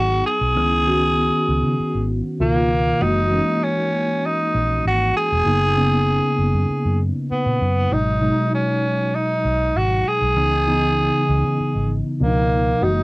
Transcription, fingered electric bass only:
0, 0, Header, 1, 3, 480
1, 0, Start_track
1, 0, Tempo, 612870
1, 437, Time_signature, 4, 2, 24, 8
1, 10207, End_track
2, 0, Start_track
2, 0, Title_t, "Fingered electric bass"
2, 0, Program_c, 0, 33
2, 0, Note_on_c, 0, 32, 73
2, 160, Note_off_c, 0, 32, 0
2, 322, Note_on_c, 0, 35, 76
2, 444, Note_off_c, 0, 35, 0
2, 444, Note_on_c, 0, 37, 89
2, 1011, Note_off_c, 0, 37, 0
2, 1164, Note_on_c, 0, 37, 74
2, 1261, Note_off_c, 0, 37, 0
2, 1278, Note_on_c, 0, 49, 78
2, 1378, Note_off_c, 0, 49, 0
2, 1524, Note_on_c, 0, 32, 72
2, 1722, Note_off_c, 0, 32, 0
2, 1878, Note_on_c, 0, 37, 78
2, 2278, Note_off_c, 0, 37, 0
2, 2360, Note_on_c, 0, 30, 83
2, 2659, Note_off_c, 0, 30, 0
2, 3560, Note_on_c, 0, 34, 62
2, 3759, Note_off_c, 0, 34, 0
2, 3801, Note_on_c, 0, 32, 73
2, 4000, Note_off_c, 0, 32, 0
2, 4166, Note_on_c, 0, 28, 69
2, 4263, Note_off_c, 0, 28, 0
2, 4280, Note_on_c, 0, 30, 76
2, 4849, Note_off_c, 0, 30, 0
2, 5000, Note_on_c, 0, 30, 75
2, 5099, Note_off_c, 0, 30, 0
2, 5120, Note_on_c, 0, 42, 75
2, 5219, Note_off_c, 0, 42, 0
2, 5365, Note_on_c, 0, 42, 67
2, 5562, Note_off_c, 0, 42, 0
2, 5843, Note_on_c, 0, 46, 67
2, 5941, Note_off_c, 0, 46, 0
2, 5962, Note_on_c, 0, 42, 79
2, 6160, Note_off_c, 0, 42, 0
2, 6198, Note_on_c, 0, 32, 82
2, 6498, Note_off_c, 0, 32, 0
2, 7400, Note_on_c, 0, 35, 71
2, 7598, Note_off_c, 0, 35, 0
2, 7639, Note_on_c, 0, 32, 79
2, 7838, Note_off_c, 0, 32, 0
2, 8001, Note_on_c, 0, 35, 73
2, 8118, Note_off_c, 0, 35, 0
2, 8118, Note_on_c, 0, 37, 82
2, 8687, Note_off_c, 0, 37, 0
2, 8841, Note_on_c, 0, 37, 75
2, 8939, Note_off_c, 0, 37, 0
2, 8962, Note_on_c, 0, 49, 75
2, 9059, Note_off_c, 0, 49, 0
2, 9203, Note_on_c, 0, 32, 72
2, 9400, Note_off_c, 0, 32, 0
2, 9562, Note_on_c, 0, 37, 76
2, 9959, Note_off_c, 0, 37, 0
2, 10035, Note_on_c, 0, 30, 89
2, 10207, Note_off_c, 0, 30, 0
2, 10207, End_track
3, 0, Start_track
3, 0, Title_t, "Muted fingered electric bass strokes"
3, 1406, Note_on_c, 9, 29, 43
3, 1484, Note_off_c, 9, 29, 0
3, 5243, Note_on_c, 9, 29, 41
3, 5321, Note_off_c, 9, 29, 0
3, 5726, Note_on_c, 9, 29, 37
3, 5804, Note_off_c, 9, 29, 0
3, 9082, Note_on_c, 9, 29, 41
3, 9160, Note_off_c, 9, 29, 0
3, 10207, End_track
0, 0, End_of_file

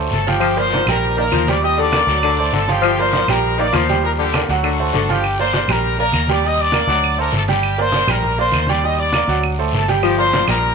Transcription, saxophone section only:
0, 0, Header, 1, 2, 480
1, 0, Start_track
1, 0, Key_signature, -2, "minor"
1, 0, Tempo, 300300
1, 671, Time_signature, 4, 2, 24, 8
1, 17176, End_track
2, 0, Start_track
2, 0, Title_t, "Saxophone section"
2, 0, Program_c, 0, 65
2, 651, Note_on_c, 0, 53, 98
2, 1375, Note_off_c, 0, 53, 0
2, 1870, Note_on_c, 0, 51, 78
2, 1998, Note_off_c, 0, 51, 0
2, 2111, Note_on_c, 0, 53, 82
2, 2492, Note_off_c, 0, 53, 0
2, 2841, Note_on_c, 0, 50, 85
2, 3220, Note_off_c, 0, 50, 0
2, 3566, Note_on_c, 0, 50, 94
2, 3818, Note_off_c, 0, 50, 0
2, 4039, Note_on_c, 0, 50, 79
2, 4293, Note_off_c, 0, 50, 0
2, 4512, Note_on_c, 0, 53, 107
2, 5230, Note_off_c, 0, 53, 0
2, 5718, Note_on_c, 0, 51, 80
2, 5846, Note_off_c, 0, 51, 0
2, 5960, Note_on_c, 0, 53, 87
2, 6340, Note_off_c, 0, 53, 0
2, 6690, Note_on_c, 0, 50, 80
2, 7067, Note_off_c, 0, 50, 0
2, 7411, Note_on_c, 0, 50, 89
2, 7662, Note_off_c, 0, 50, 0
2, 7877, Note_on_c, 0, 50, 83
2, 8131, Note_off_c, 0, 50, 0
2, 16031, Note_on_c, 0, 53, 101
2, 16741, Note_off_c, 0, 53, 0
2, 17176, End_track
0, 0, End_of_file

